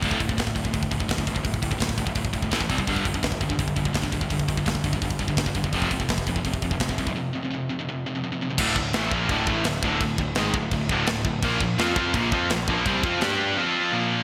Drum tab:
CC |----------------|----------------|----------------|----------------|
HH |o-o-o-o-o-o-o-o-|o-o-o-o-o-o-o-o-|o-o-o-o-o-o-o-o-|o-o-o-o-o-o-o-o-|
SD |----o-------o---|----o-------o---|----o-------o---|----o-------o---|
BD |oooooooooooooooo|oooooooooooooooo|oooooooooooooooo|oooooooooooooooo|

CC |----------------|----------------|x---x---x---x---|x---x---x---x---|
HH |o-o-o-o-o-o-o-o-|----------------|----------------|----------------|
SD |----o-------o---|----------------|----o-------o---|----o-------o---|
BD |oooooooooooooooo|----------------|o-o---o-o-o---o-|o-o---o-o-o---o-|

CC |x---x---x---x---|x---x-----------|
HH |----------------|----------------|
SD |----o-------o---|----o-----------|
BD |o-o---o-o-o---o-|o-o-------------|